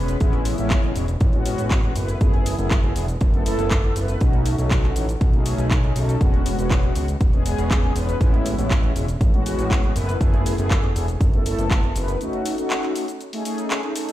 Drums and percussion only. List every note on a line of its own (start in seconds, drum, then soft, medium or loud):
0.08 closed hi-hat medium
0.08 cabasa soft
0.20 kick loud
0.20 closed hi-hat medium
0.20 cabasa soft
0.33 closed hi-hat soft
0.45 open hi-hat loud
0.45 cabasa medium
0.58 closed hi-hat medium
0.58 cabasa soft
0.70 kick loud
0.70 clap loud
0.70 closed hi-hat medium
0.70 cabasa soft
0.83 closed hi-hat soft
0.96 open hi-hat loud
0.96 cabasa medium
1.08 closed hi-hat medium
1.08 cabasa soft
1.20 kick loud
1.20 closed hi-hat medium
1.20 cabasa soft
1.33 closed hi-hat soft
1.46 open hi-hat loud
1.46 cabasa medium
1.58 closed hi-hat medium
1.58 cabasa soft
1.71 kick loud
1.71 clap loud
1.71 closed hi-hat medium
1.71 cabasa soft
1.84 closed hi-hat soft
1.96 open hi-hat loud
1.96 cabasa medium
2.08 closed hi-hat medium
2.08 cabasa soft
2.21 kick loud
2.21 closed hi-hat medium
2.21 cabasa soft
2.34 closed hi-hat soft
2.46 open hi-hat loud
2.46 cabasa medium
2.59 closed hi-hat soft
2.59 cabasa soft
2.71 kick loud
2.71 clap loud
2.71 closed hi-hat medium
2.71 cabasa soft
2.84 closed hi-hat soft
2.96 open hi-hat loud
2.96 cabasa medium
3.08 closed hi-hat medium
3.08 cabasa soft
3.21 kick loud
3.21 closed hi-hat medium
3.21 cabasa soft
3.34 closed hi-hat soft
3.46 open hi-hat loud
3.46 cabasa medium
3.59 closed hi-hat medium
3.59 cabasa soft
3.71 kick loud
3.71 clap loud
3.71 closed hi-hat medium
3.71 cabasa soft
3.84 closed hi-hat soft
3.96 open hi-hat loud
3.96 cabasa medium
4.08 closed hi-hat medium
4.08 cabasa soft
4.21 kick loud
4.21 closed hi-hat medium
4.21 cabasa soft
4.33 closed hi-hat soft
4.46 open hi-hat loud
4.46 cabasa medium
4.58 closed hi-hat medium
4.58 cabasa soft
4.71 kick loud
4.71 clap loud
4.71 closed hi-hat medium
4.71 cabasa soft
4.84 clap soft
4.84 closed hi-hat soft
4.96 open hi-hat loud
4.96 cabasa medium
5.09 closed hi-hat medium
5.09 cabasa soft
5.21 kick loud
5.21 closed hi-hat medium
5.21 cabasa soft
5.33 closed hi-hat soft
5.46 open hi-hat loud
5.46 cabasa medium
5.58 closed hi-hat soft
5.58 cabasa soft
5.71 kick loud
5.71 clap loud
5.71 closed hi-hat medium
5.71 cabasa soft
5.84 closed hi-hat soft
5.96 open hi-hat loud
5.96 cabasa medium
6.09 closed hi-hat medium
6.09 cabasa soft
6.21 kick loud
6.21 closed hi-hat medium
6.21 cabasa soft
6.34 closed hi-hat soft
6.46 open hi-hat loud
6.46 cabasa medium
6.59 closed hi-hat medium
6.59 cabasa soft
6.71 kick loud
6.71 clap loud
6.71 closed hi-hat soft
6.71 cabasa soft
6.83 closed hi-hat soft
6.96 open hi-hat loud
6.96 cabasa medium
7.08 closed hi-hat medium
7.08 cabasa soft
7.21 kick loud
7.21 closed hi-hat medium
7.21 cabasa soft
7.33 closed hi-hat soft
7.46 open hi-hat loud
7.46 cabasa medium
7.58 closed hi-hat soft
7.58 cabasa soft
7.71 kick loud
7.71 clap loud
7.71 closed hi-hat medium
7.71 cabasa soft
7.84 closed hi-hat soft
7.96 open hi-hat loud
7.96 cabasa medium
8.09 closed hi-hat medium
8.09 cabasa soft
8.21 kick loud
8.21 closed hi-hat medium
8.21 cabasa soft
8.34 closed hi-hat soft
8.46 open hi-hat loud
8.46 cabasa medium
8.58 closed hi-hat medium
8.58 cabasa soft
8.71 kick loud
8.71 clap loud
8.71 closed hi-hat medium
8.71 cabasa soft
8.83 closed hi-hat soft
8.96 open hi-hat loud
8.96 cabasa medium
9.08 closed hi-hat medium
9.08 cabasa soft
9.21 kick loud
9.21 closed hi-hat medium
9.21 cabasa soft
9.34 closed hi-hat soft
9.46 open hi-hat loud
9.46 cabasa medium
9.59 closed hi-hat medium
9.59 cabasa soft
9.71 kick loud
9.71 clap loud
9.71 closed hi-hat medium
9.71 cabasa soft
9.84 closed hi-hat soft
9.96 open hi-hat loud
9.96 cabasa medium
10.09 closed hi-hat medium
10.09 cabasa soft
10.21 kick loud
10.21 closed hi-hat medium
10.21 cabasa soft
10.34 closed hi-hat soft
10.46 open hi-hat loud
10.46 cabasa medium
10.58 closed hi-hat medium
10.58 cabasa soft
10.71 kick loud
10.71 clap loud
10.71 closed hi-hat medium
10.71 cabasa soft
10.83 closed hi-hat soft
10.96 open hi-hat loud
10.96 cabasa medium
11.08 closed hi-hat medium
11.08 cabasa soft
11.21 kick loud
11.21 closed hi-hat medium
11.21 cabasa soft
11.33 closed hi-hat soft
11.46 open hi-hat loud
11.46 cabasa medium
11.59 closed hi-hat medium
11.59 cabasa soft
11.71 kick loud
11.71 clap loud
11.71 closed hi-hat medium
11.71 cabasa soft
11.83 closed hi-hat soft
11.96 open hi-hat loud
11.96 cabasa medium
12.08 closed hi-hat medium
12.08 cabasa soft
12.21 closed hi-hat medium
12.21 cabasa soft
12.33 closed hi-hat soft
12.46 open hi-hat loud
12.46 cabasa medium
12.58 closed hi-hat medium
12.58 cabasa soft
12.70 clap loud
12.70 closed hi-hat medium
12.70 cabasa soft
12.83 clap soft
12.83 closed hi-hat soft
12.96 open hi-hat loud
12.96 cabasa medium
13.08 closed hi-hat medium
13.08 cabasa soft
13.21 closed hi-hat medium
13.21 cabasa soft
13.33 open hi-hat medium
13.45 open hi-hat loud
13.45 cabasa medium
13.58 closed hi-hat medium
13.58 cabasa soft
13.70 clap loud
13.70 closed hi-hat medium
13.70 cabasa soft
13.83 closed hi-hat soft
13.96 open hi-hat loud
13.96 cabasa medium
14.09 closed hi-hat medium
14.09 cabasa soft